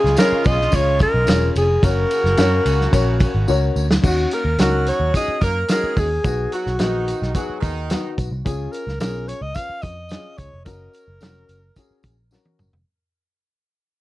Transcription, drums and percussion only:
0.05 snare
0.17 snare, ride, tambourine
0.44 kick, ride, tambourine
0.61 snare
0.72 kick, ride, tambourine
0.99 kick, ride, tambourine
1.27 snare, ride, tambourine
1.56 ride, tambourine
1.83 kick, ride, tambourine
2.11 ride, tambourine
2.25 snare
2.37 snare, ride, tambourine
2.66 ride, tambourine
2.81 snare
2.93 kick, ride, tambourine
3.20 kick, ride, tambourine
3.48 tambourine
3.76 tambourine
3.91 snare
4.04 kick, crash, tambourine
4.31 closed hi-hat, tambourine
4.58 snare, closed hi-hat, tambourine
4.86 closed hi-hat, tambourine
5.14 kick, closed hi-hat, tambourine
5.41 kick, closed hi-hat, tambourine
5.68 snare, closed hi-hat, tambourine
5.97 kick, open hi-hat, tambourine
6.24 kick, closed hi-hat, tambourine
6.52 closed hi-hat, tambourine
6.66 snare
6.79 snare, closed hi-hat, tambourine
7.08 closed hi-hat, tambourine
7.22 snare
7.35 kick, closed hi-hat, tambourine
7.62 kick, closed hi-hat, tambourine
7.90 snare, closed hi-hat, tambourine
8.18 kick, closed hi-hat, tambourine
8.46 kick, closed hi-hat, tambourine
8.73 closed hi-hat, tambourine
8.88 snare
9.00 snare, closed hi-hat, tambourine
9.28 closed hi-hat, tambourine
9.55 kick, closed hi-hat, tambourine
9.82 kick, closed hi-hat, tambourine
10.09 snare, closed hi-hat, tambourine
10.38 kick, closed hi-hat, tambourine
10.66 kick, closed hi-hat, tambourine
10.93 closed hi-hat, tambourine
11.21 snare, closed hi-hat, tambourine
11.49 closed hi-hat, tambourine
11.76 kick, closed hi-hat, tambourine
12.03 kick, closed hi-hat, tambourine
12.31 snare, tambourine
12.45 high tom
12.59 mid tom, tambourine
12.73 floor tom

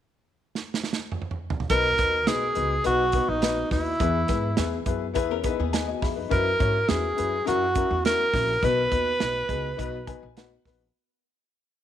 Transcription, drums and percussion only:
0.55 snare
0.74 snare
0.84 snare
0.93 snare
1.12 mid tom
1.22 mid tom
1.31 mid tom
1.50 floor tom
1.60 floor tom
1.70 kick, closed hi-hat
1.98 kick, snare, closed hi-hat
2.27 snare, closed hi-hat
2.55 closed hi-hat
2.84 closed hi-hat
3.12 kick, closed hi-hat
3.42 snare, closed hi-hat
3.71 kick, snare, open hi-hat
4.00 kick, closed hi-hat
4.28 kick, snare, closed hi-hat
4.57 snare, closed hi-hat
4.86 kick, closed hi-hat
5.15 kick, closed hi-hat
5.44 kick, closed hi-hat
5.73 snare, closed hi-hat
6.02 kick, snare, open hi-hat
6.31 kick, closed hi-hat
6.60 kick, closed hi-hat
6.89 snare, closed hi-hat
7.18 closed hi-hat
7.47 closed hi-hat
7.75 kick, closed hi-hat
8.05 snare, closed hi-hat
8.34 kick, snare, open hi-hat
8.63 kick, closed hi-hat
8.92 kick, closed hi-hat
9.20 snare, closed hi-hat
9.49 kick, closed hi-hat
9.79 kick, closed hi-hat
10.07 kick, closed hi-hat
10.37 snare, closed hi-hat
10.65 kick, snare, open hi-hat

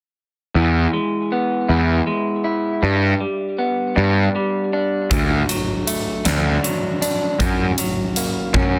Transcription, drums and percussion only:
5.11 kick, closed hi-hat
5.49 closed hi-hat
5.87 closed hi-hat
6.25 snare, closed hi-hat
6.64 closed hi-hat
7.02 closed hi-hat
7.40 kick, closed hi-hat
7.78 closed hi-hat
8.16 closed hi-hat
8.54 kick, high tom

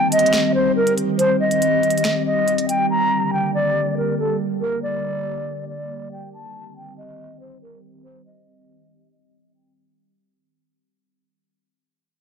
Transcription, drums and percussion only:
0.12 closed hi-hat
0.19 closed hi-hat
0.26 closed hi-hat
0.33 finger snap, snare, closed hi-hat
0.87 closed hi-hat
0.98 closed hi-hat
1.19 closed hi-hat
1.51 closed hi-hat
1.62 closed hi-hat
1.83 closed hi-hat
1.90 closed hi-hat
1.98 closed hi-hat
2.04 finger snap, snare, closed hi-hat
2.48 closed hi-hat
2.58 closed hi-hat
2.69 closed hi-hat

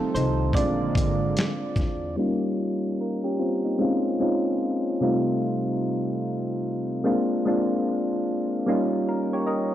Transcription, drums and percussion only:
0.16 closed hi-hat, shaker
0.53 kick, closed hi-hat
0.95 kick, closed hi-hat, shaker
1.37 finger snap, snare, closed hi-hat
1.76 kick, snare, shaker

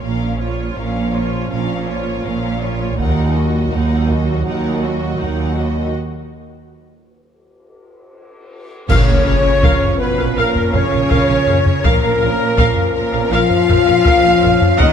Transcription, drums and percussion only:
2.98 taiko
4.10 taiko
8.89 concert bass drum, taiko, crash
9.63 taiko
9.82 taiko low
10.55 taiko low
10.74 taiko low
11.11 taiko
11.48 taiko low
11.66 taiko low
11.84 taiko
12.58 taiko
12.77 taiko low
13.51 taiko low
13.69 taiko low
14.05 taiko
14.43 taiko low
14.62 taiko low
14.80 taiko

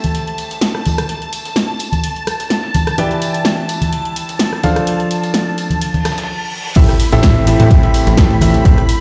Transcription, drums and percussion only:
0.04 closed hi-hat, tambourine, high conga
0.14 closed hi-hat, ride, tambourine
0.27 closed hi-hat
0.38 closed hi-hat, ride, tambourine
0.51 snare, closed hi-hat, tambourine
0.61 snare, closed hi-hat, ride, tambourine
0.75 cross-stick, snare
0.86 closed hi-hat, ride, tambourine, high conga
0.98 cross-stick, closed hi-hat, tambourine
1.09 closed hi-hat, ride, tambourine
1.22 closed hi-hat, ride
1.33 closed hi-hat, ride, tambourine
1.45 snare, closed hi-hat, tambourine
1.56 snare, closed hi-hat, ride, tambourine
1.69 ride
1.79 closed hi-hat, ride, tambourine
1.92 closed hi-hat, tambourine, high conga
2.03 closed hi-hat, ride, tambourine
2.16 closed hi-hat
2.27 cross-stick, closed hi-hat, ride, tambourine
2.40 snare, closed hi-hat, tambourine
2.50 snare, closed hi-hat, open hi-hat, tambourine
2.64 snare
2.74 closed hi-hat, ride, tambourine, high conga
2.87 cross-stick, snare, closed hi-hat, tambourine
2.98 closed hi-hat, ride, tambourine
3.11 snare, closed hi-hat
3.22 closed hi-hat, ride, tambourine
3.34 closed hi-hat, ride, tambourine
3.45 snare, closed hi-hat, ride, tambourine
3.69 closed hi-hat, ride, tambourine
3.81 closed hi-hat, tambourine, high conga
3.93 closed hi-hat, ride, tambourine
4.05 closed hi-hat
4.16 closed hi-hat, ride, tambourine
4.29 snare, closed hi-hat, tambourine
4.39 snare, closed hi-hat, ride, tambourine
4.53 cross-stick, snare
4.63 closed hi-hat, ride, tambourine, high conga
4.76 cross-stick, closed hi-hat, tambourine
4.87 closed hi-hat, ride, tambourine
5.00 closed hi-hat, ride
5.11 closed hi-hat, ride, tambourine
5.23 snare, closed hi-hat, tambourine
5.34 snare, closed hi-hat, ride, tambourine
5.47 ride
5.58 closed hi-hat, ride, tambourine
5.70 closed hi-hat, tambourine, high conga
5.81 closed hi-hat, ride, tambourine
5.94 closed hi-hat, high conga
6.05 cross-stick, snare, closed hi-hat, ride, tambourine
6.12 snare, ride
6.17 snare, closed hi-hat, ride, tambourine
6.23 snare, ride
6.76 kick, closed hi-hat, crash, ride, tambourine
6.89 cross-stick, snare, closed hi-hat
7.00 open hi-hat, ride, tambourine
7.12 closed hi-hat, ride, tambourine
7.23 kick, snare, closed hi-hat, ride
7.47 open hi-hat, ride, tambourine
7.60 closed hi-hat, tambourine, high conga
7.71 kick, closed hi-hat, ride, tambourine
7.83 closed hi-hat
7.94 open hi-hat, ride, tambourine
8.07 snare, closed hi-hat, tambourine
8.17 kick, snare, closed hi-hat, ride
8.31 snare
8.41 cross-stick, open hi-hat, ride, tambourine, high conga
8.54 closed hi-hat, tambourine
8.65 kick, closed hi-hat, ride, tambourine
8.78 cross-stick, closed hi-hat, ride
8.89 open hi-hat, ride, tambourine

